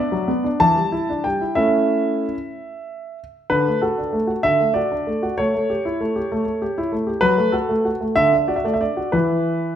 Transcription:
0.00 0.13 D4 soft
0.00 0.61 D5 medium
0.12 0.30 F#3 soft
0.28 0.46 B3 soft
0.44 0.61 D4 soft
0.60 0.77 E3 medium
0.60 1.25 A5 medium
0.75 0.93 G3 soft
0.92 1.10 E4 soft
1.09 1.26 D4 soft
1.24 1.42 G3 soft
1.24 1.57 G5 medium
1.41 1.54 E4 soft
1.55 2.25 A3 soft
1.55 2.34 C#4 soft
1.55 2.34 E4 soft
1.55 3.18 E5 medium
3.50 3.66 D3 soft
3.50 3.79 B4 medium
3.67 3.84 A3 soft
3.82 3.99 F#4 soft
3.82 4.45 A4 medium
3.98 4.14 D4 soft
4.13 4.30 A3 soft
4.27 4.45 F#4 soft
4.43 4.60 D3 soft
4.43 4.72 E5 medium
4.60 4.77 A3 soft
4.74 4.92 F#4 soft
4.74 5.33 D5 medium
4.92 5.08 D4 soft
5.07 5.23 A3 soft
5.23 5.38 F#4 soft
5.38 5.53 A3 soft
5.38 6.91 C#5 medium
5.55 5.71 A3 soft
5.70 5.86 G4 soft
5.85 6.01 E4 soft
6.01 6.16 A3 soft
6.16 6.31 G4 soft
6.32 6.44 A3 soft
6.45 6.62 A3 soft
6.62 6.77 G4 soft
6.78 6.93 E4 soft
6.92 7.08 A3 soft
7.07 7.22 G4 soft
7.21 7.37 F#3 medium
7.21 7.53 B4 medium
7.38 7.54 A3 soft
7.52 7.70 F#4 soft
7.52 7.90 A4 medium
7.69 7.86 A3 soft
7.85 8.01 F#4 soft
8.01 8.16 A3 soft
8.16 8.32 D3 medium
8.16 8.35 E5 medium
8.33 8.49 D4 soft
8.48 8.65 F#4 soft
8.48 8.56 D5 medium
8.56 8.64 E5 soft
8.64 8.81 A3 soft
8.64 8.73 D5 medium
8.74 8.82 E5 soft
8.81 8.98 D4 soft
8.81 9.09 D5 medium
8.97 9.13 F#4 soft
9.12 9.76 E3 soft
9.12 9.76 E4 soft
9.12 9.76 B4 medium

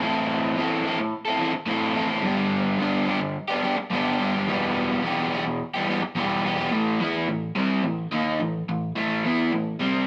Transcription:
0.00 0.54 A2 medium
0.00 0.56 E3 loud
0.00 0.57 C4 loud
0.00 0.58 E4 loud
0.00 0.59 A4 loud
0.56 1.12 A2 medium
0.56 0.82 E3 loud
0.56 0.84 C4 medium
0.56 0.85 E4 loud
0.60 0.86 A4 loud
0.83 0.99 E3 medium
0.83 0.99 C4 medium
0.83 0.98 E4 medium
0.88 0.98 A4 medium
0.99 muted overdriven electric guitar stroke medium
1.25 1.39 C4 medium
1.25 1.40 E4 medium
1.25 1.41 A4 medium
1.38 1.53 E3 medium
1.38 1.53 C4 medium
1.38 1.52 E4 medium
1.38 1.52 A4 medium
1.53 muted overdriven electric guitar stroke medium
1.66 2.21 A2 loud
1.66 1.92 E3 medium
1.66 1.94 C4 loud
1.66 1.95 E4 loud
1.70 1.96 A4 loud
1.94 2.21 E3 medium
1.94 2.10 C4 medium
1.94 2.09 E4 medium
1.94 2.07 A4 medium
2.08 2.23 C4 medium
2.08 2.22 E4 medium
2.08 2.21 A4 medium
2.22 2.77 G2 loud
2.22 2.79 D3 loud
2.22 2.80 G3 loud
2.22 2.80 B3 loud
2.22 2.81 D4 loud
2.26 2.82 G4 loud
2.79 3.35 G2 loud
2.79 3.36 D3 medium
2.79 3.06 G3 loud
2.79 3.07 B3 loud
2.79 3.08 D4 loud
2.79 3.10 G4 loud
3.06 3.20 G3 medium
3.06 3.20 B3 medium
3.06 3.20 D4 medium
3.06 3.20 G4 medium
3.21 muted overdriven electric guitar stroke soft
3.48 3.62 B3 medium
3.48 3.63 D4 medium
3.48 3.64 G4 medium
3.52 3.61 G3 medium
3.62 3.77 G3 medium
3.62 3.77 B3 medium
3.62 3.77 D4 medium
3.62 3.76 G4 medium
3.77 muted overdriven electric guitar stroke medium
3.91 4.45 G2 loud
3.91 4.46 D3 loud
3.91 4.18 G3 medium
3.91 4.19 B3 loud
3.91 4.20 D4 loud
3.91 4.21 G4 loud
4.19 4.36 G3 medium
4.19 4.35 B3 medium
4.19 4.33 D4 medium
4.19 4.32 G4 medium
4.33 4.47 G3 medium
4.33 4.47 B3 medium
4.33 4.46 D4 medium
4.33 4.46 G4 medium
4.47 5.02 E2 loud
4.47 5.03 B2 loud
4.47 5.04 E3 medium
4.47 5.05 G3 loud
4.47 5.05 B3 loud
4.51 5.06 G4 loud
5.03 5.59 E2 medium
5.03 5.60 B2 medium
5.03 5.29 E3 loud
5.03 5.31 G3 loud
5.03 5.33 B3 loud
5.03 5.34 G4 loud
5.31 5.46 E3 medium
5.31 5.45 G3 medium
5.31 5.45 B3 medium
5.35 5.45 G4 medium
5.46 muted overdriven electric guitar stroke soft
5.74 5.86 E3 medium
5.74 5.87 G3 medium
5.74 5.88 B3 medium
5.74 5.89 G4 medium
5.87 6.02 E3 medium
5.87 6.01 G3 medium
5.87 6.01 B3 medium
5.87 6.01 G4 medium
6.02 muted overdriven electric guitar stroke medium
6.15 6.70 E2 loud
6.15 6.70 B2 loud
6.15 6.42 E3 loud
6.15 6.44 G3 loud
6.15 6.44 B3 loud
6.19 6.46 G4 loud
6.44 6.60 E3 medium
6.44 6.58 G3 medium
6.44 6.57 B3 medium
6.44 6.56 G4 medium
6.57 6.70 E3 medium
6.57 6.71 G3 medium
6.57 6.70 B3 medium
6.57 6.70 G4 medium
6.71 6.98 A2 loud
6.71 6.99 E3 loud
6.71 6.99 A3 loud
7.00 7.27 E3 medium
7.00 7.27 B3 loud
7.00 7.28 E4 medium
7.29 7.50 A2 medium
7.29 7.51 E3 medium
7.56 7.83 C3 loud
7.56 7.83 G3 loud
7.56 7.84 C4 loud
7.84 8.06 A2 medium
7.84 8.06 E3 medium
8.12 8.39 D#3 medium
8.12 8.39 A#3 loud
8.12 8.40 D#4 medium
8.40 8.62 A2 medium
8.40 8.63 E3 medium
8.69 8.91 A2 medium
8.69 8.91 E3 medium
8.96 9.23 A2 medium
8.96 9.23 E3 medium
8.96 9.24 A3 loud
9.25 9.52 E3 medium
9.25 9.52 B3 medium
9.25 9.52 E4 loud
9.53 9.75 A2 medium
9.53 9.75 E3 medium
9.80 10.07 C3 medium
9.80 10.07 G3 loud
9.80 10.07 C4 loud

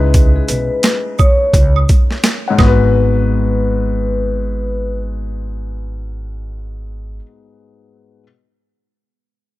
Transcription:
0.00 0.36 C#2 loud
0.00 2.17 C#3 medium
0.00 2.18 G#3 medium
0.00 2.19 D#4 medium
0.00 2.20 E4 medium
0.00 2.21 B4 medium
0.14 kick loud
0.14 closed hi-hat medium
0.14 shaker medium
0.36 0.48 G#4 medium
0.48 0.67 B1 medium
0.48 1.15 B4 medium
0.48 closed hi-hat medium
0.48 shaker medium
0.48 shaker soft
0.83 snare loud
0.83 closed hi-hat medium
0.83 shaker medium
1.19 1.72 C#5 medium
1.19 kick loud
1.19 high woodblock medium
1.19 shaker medium
1.54 1.82 C#2 loud
1.54 kick medium
1.54 closed hi-hat medium
1.54 shaker medium
1.76 high woodblock medium
1.89 kick loud
1.89 closed hi-hat medium
1.89 shaker medium
1.89 shaker soft
2.11 snare soft
2.23 snare loud
2.23 closed hi-hat medium
2.23 shaker medium
2.48 7.14 G#2 medium
2.48 2.59 C#5 medium
2.48 2.59 F#5 medium
2.54 7.16 G#3 medium
2.58 7.19 G#1 loud
2.58 7.18 B3 medium
2.58 4.99 B4 medium
2.58 kick loud
2.58 snare medium
2.58 high woodblock medium
2.63 7.21 F#4 medium
2.67 7.23 B4 medium

